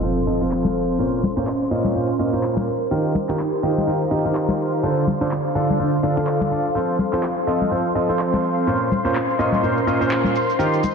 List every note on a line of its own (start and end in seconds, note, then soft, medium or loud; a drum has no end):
0.00 0.17 F3 medium
0.00 0.99 C4 medium
0.00 0.17 C4 medium
0.00 0.17 F4 medium
0.00 0.99 A4 medium
0.00 0.17 A4 medium
0.00 6.74 C5 medium
0.00 0.17 C5 medium
0.00 2.67 F5 medium
0.00 3.55 C6 medium
0.00 6.74 C6 medium
0.00 tambourine medium
0.00 impact medium
0.00 shaker soft
0.17 tambourine soft
0.17 shaker soft
0.27 0.39 F3 medium
0.27 0.39 C4 medium
0.27 0.39 F4 medium
0.27 0.39 A4 medium
0.27 0.39 D#5 medium
0.27 tambourine medium
0.27 shaker medium
0.41 0.97 F3 medium
0.41 0.97 C4 medium
0.41 0.97 F4 medium
0.41 0.97 A4 medium
0.41 0.97 C5 medium
0.41 shaker soft
0.51 clap loud
0.65 tambourine soft
0.65 high conga loud
0.65 shaker soft
0.75 tambourine medium
0.75 shaker medium
0.89 tambourine soft
0.89 shaker soft
0.99 1.19 A#2 medium
0.99 1.19 C#4 medium
0.99 2.67 C#4 medium
0.99 1.19 F4 medium
0.99 1.19 A#4 medium
0.99 1.19 C5 medium
0.99 tambourine medium
0.99 shaker soft
1.12 tambourine soft
1.12 shaker soft
1.23 tambourine loud
1.23 high conga medium
1.23 shaker medium
1.37 1.47 A#2 medium
1.37 1.47 C#4 medium
1.37 1.47 F4 medium
1.37 1.47 A#4 medium
1.37 1.47 C5 medium
1.37 tambourine soft
1.37 shaker soft
1.47 clap loud
1.47 tambourine medium
1.61 tambourine soft
1.61 shaker soft
1.66 3.55 A#4 medium
1.71 1.93 A#2 medium
1.71 1.93 C#4 medium
1.71 1.93 F4 medium
1.71 1.93 A#4 medium
1.71 1.93 D#5 medium
1.71 tambourine medium
1.71 shaker medium
1.84 tambourine soft
1.84 high conga medium
1.84 shaker soft
1.95 2.09 A#2 medium
1.95 2.09 C#4 medium
1.95 2.09 F4 medium
1.95 2.09 A#4 medium
1.95 2.09 C5 medium
1.95 tambourine medium
1.95 shaker soft
2.09 tambourine soft
2.09 shaker soft
2.19 2.31 A#2 medium
2.19 2.31 C#4 medium
2.19 2.31 F4 medium
2.19 2.31 A#4 medium
2.19 2.31 D#5 medium
2.19 tambourine medium
2.19 shaker medium
2.33 2.66 A#2 medium
2.33 2.66 C#4 medium
2.33 2.66 F4 medium
2.33 2.66 A#4 medium
2.33 2.66 C5 medium
2.33 tambourine soft
2.33 shaker soft
2.43 clap loud
2.43 tambourine medium
2.57 tambourine soft
2.57 high conga medium
2.57 shaker soft
2.67 4.83 D#4 medium
2.67 tambourine loud
2.67 shaker medium
2.80 tambourine soft
2.80 shaker soft
2.84 5.61 G4 medium
2.91 3.11 D#3 medium
2.91 3.11 D#4 medium
2.91 3.11 F4 medium
2.91 3.11 G4 medium
2.91 3.11 A#4 medium
2.91 tambourine soft
2.91 shaker soft
3.05 tambourine soft
3.05 shaker soft
3.15 tambourine loud
3.15 high conga medium
3.15 shaker medium
3.28 3.39 D#3 medium
3.28 3.39 D#4 medium
3.28 3.39 F4 medium
3.28 3.39 G4 medium
3.28 3.39 A#4 loud
3.28 clap soft
3.28 tambourine soft
3.28 shaker soft
3.39 clap loud
3.39 shaker soft
3.53 tambourine soft
3.53 shaker soft
3.63 3.85 D#3 medium
3.63 3.85 D#4 medium
3.63 3.85 F4 medium
3.63 3.85 G4 medium
3.63 3.85 D#5 medium
3.63 10.95 F5 medium
3.63 4.83 A#5 medium
3.63 tambourine medium
3.63 shaker medium
3.77 tambourine soft
3.77 high conga medium
3.77 shaker soft
3.87 4.01 D#3 medium
3.87 4.01 D#4 medium
3.87 4.01 F4 medium
3.87 4.01 G4 medium
3.87 4.01 A#4 medium
3.87 tambourine medium
3.87 shaker soft
4.01 tambourine soft
4.01 shaker soft
4.11 4.23 D#3 medium
4.11 4.23 D#4 medium
4.11 4.23 F4 medium
4.11 4.23 G4 medium
4.11 4.23 D#5 medium
4.11 tambourine medium
4.11 shaker medium
4.24 4.81 D#3 medium
4.24 4.81 D#4 medium
4.24 4.81 F4 medium
4.24 4.81 G4 medium
4.24 4.81 A#4 medium
4.24 tambourine soft
4.24 shaker soft
4.35 clap loud
4.35 tambourine medium
4.35 shaker soft
4.48 tambourine soft
4.48 high conga medium
4.48 shaker soft
4.59 tambourine medium
4.59 shaker medium
4.73 tambourine soft
4.73 shaker soft
4.83 5.03 D3 medium
4.83 7.53 D4 medium
4.83 5.03 D4 medium
4.83 5.03 F4 medium
4.83 5.03 A4 medium
4.83 5.03 C5 medium
4.83 tambourine soft
4.83 shaker soft
4.97 8.67 A4 medium
4.97 tambourine soft
4.97 shaker soft
5.07 tambourine medium
5.07 high conga medium
5.07 shaker medium
5.21 5.31 D3 medium
5.21 5.31 D4 medium
5.21 5.31 F4 medium
5.21 5.31 A4 medium
5.21 5.31 C5 loud
5.21 tambourine soft
5.21 shaker soft
5.31 clap loud
5.31 tambourine soft
5.31 shaker soft
5.46 tambourine soft
5.46 shaker soft
5.55 5.77 D3 medium
5.55 5.77 D4 medium
5.55 5.77 F4 medium
5.55 5.77 A4 medium
5.55 5.77 F5 medium
5.55 tambourine medium
5.55 shaker medium
5.68 10.95 C6 medium
5.68 tambourine soft
5.68 high conga medium
5.68 shaker soft
5.79 5.93 D3 medium
5.79 5.93 D4 medium
5.79 5.93 F4 medium
5.79 5.93 A4 medium
5.79 5.93 C5 medium
5.79 tambourine medium
5.79 shaker soft
5.93 tambourine soft
5.93 shaker soft
6.03 6.15 D3 medium
6.03 6.15 D4 medium
6.03 6.15 F4 medium
6.03 6.15 A4 medium
6.03 6.15 F5 medium
6.03 tambourine medium
6.03 shaker medium
6.17 6.49 D3 medium
6.17 6.49 D4 medium
6.17 6.49 F4 medium
6.17 6.49 A4 medium
6.17 6.49 F5 loud
6.17 tambourine soft
6.17 shaker soft
6.27 clap loud
6.27 shaker soft
6.41 tambourine soft
6.41 high conga loud
6.41 shaker soft
6.51 6.65 D4 medium
6.51 6.65 F4 medium
6.51 6.65 A4 medium
6.51 6.65 D5 medium
6.51 tambourine medium
6.51 shaker medium
6.65 tambourine soft
6.65 shaker soft
6.75 6.95 F3 medium
6.75 6.95 C4 medium
6.75 8.67 C4 medium
6.75 6.95 F4 medium
6.75 6.95 A4 medium
6.75 10.95 C5 medium
6.75 6.95 C5 medium
6.75 10.95 C6 medium
6.75 tambourine medium
6.75 shaker soft
6.89 tambourine soft
6.89 shaker soft
6.99 tambourine medium
6.99 high conga medium
6.99 shaker medium
7.13 7.23 F3 medium
7.13 7.23 C4 medium
7.13 7.23 F4 medium
7.13 7.23 A4 medium
7.13 7.23 C5 loud
7.13 clap soft
7.13 tambourine soft
7.13 shaker soft
7.23 clap loud
7.23 shaker soft
7.37 tambourine soft
7.37 shaker soft
7.47 7.69 F3 medium
7.47 7.69 C4 medium
7.47 7.69 F4 medium
7.47 7.69 A4 medium
7.47 7.69 D#5 medium
7.47 tambourine medium
7.47 shaker medium
7.61 tambourine soft
7.61 high conga medium
7.61 shaker soft
7.71 7.85 F3 medium
7.71 7.85 C4 medium
7.71 7.85 F4 medium
7.71 7.85 A4 medium
7.71 7.85 C5 medium
7.71 tambourine soft
7.71 shaker soft
7.85 tambourine soft
7.85 shaker soft
7.95 8.07 F3 medium
7.95 8.07 C4 medium
7.95 8.07 F4 medium
7.95 8.07 A4 medium
7.95 8.07 D#5 medium
7.95 tambourine medium
7.95 shaker medium
8.09 8.65 F3 medium
8.09 8.65 C4 medium
8.09 8.65 F4 medium
8.09 8.65 A4 medium
8.09 8.65 C5 medium
8.09 tambourine soft
8.09 shaker soft
8.19 clap loud
8.19 tambourine medium
8.19 shaker soft
8.33 tambourine soft
8.33 high conga medium
8.33 shaker soft
8.43 tambourine medium
8.43 shaker medium
8.56 tambourine soft
8.56 shaker soft
8.67 8.87 A#2 medium
8.67 8.87 C#4 medium
8.67 10.35 C#4 medium
8.67 8.87 F4 medium
8.67 8.87 A#4 medium
8.67 8.87 C5 medium
8.67 tambourine soft
8.67 shaker soft
8.82 shaker soft
8.92 tambourine medium
8.92 high conga medium
8.92 shaker medium
9.04 9.15 A#2 medium
9.04 9.15 C#4 medium
9.04 9.15 F4 medium
9.04 9.15 A#4 medium
9.04 9.15 C5 medium
9.04 tambourine soft
9.04 shaker soft
9.10 10.95 A#4 medium
9.15 clap loud
9.15 tambourine medium
9.15 shaker soft
9.29 tambourine soft
9.29 shaker soft
9.39 9.61 A#2 medium
9.39 9.61 C#4 medium
9.39 9.61 F4 medium
9.39 9.61 A#4 medium
9.39 9.61 D#5 medium
9.39 tambourine medium
9.39 shaker medium
9.52 tambourine soft
9.52 high conga medium
9.52 shaker soft
9.63 9.77 A#2 medium
9.63 9.77 C#4 medium
9.63 9.77 F4 medium
9.63 9.77 A#4 medium
9.63 9.77 C5 medium
9.63 tambourine soft
9.63 shaker soft
9.77 tambourine soft
9.77 shaker soft
9.87 9.99 A#2 medium
9.87 9.99 C#4 medium
9.87 9.99 F4 medium
9.87 9.99 A#4 medium
9.87 9.99 D#5 medium
9.87 tambourine medium
9.87 shaker medium
10.01 10.34 A#2 medium
10.01 10.34 C#4 medium
10.01 10.34 F4 medium
10.01 10.34 A#4 medium
10.01 10.34 C5 medium
10.01 tambourine soft
10.01 shaker soft
10.11 clap loud
10.11 tambourine soft
10.11 shaker soft
10.24 tambourine soft
10.24 high conga medium
10.24 shaker soft
10.35 10.95 D#4 medium
10.35 tambourine medium
10.35 shaker medium
10.50 tambourine soft
10.50 shaker soft
10.59 10.79 D#3 medium
10.59 10.79 D#4 medium
10.59 10.79 F4 medium
10.59 10.79 G4 medium
10.59 10.79 A#4 medium
10.59 tambourine soft
10.59 riser medium
10.59 shaker soft
10.73 tambourine soft
10.73 shaker soft
10.83 10.95 G4 medium
10.83 tambourine medium
10.83 high conga medium
10.83 shaker medium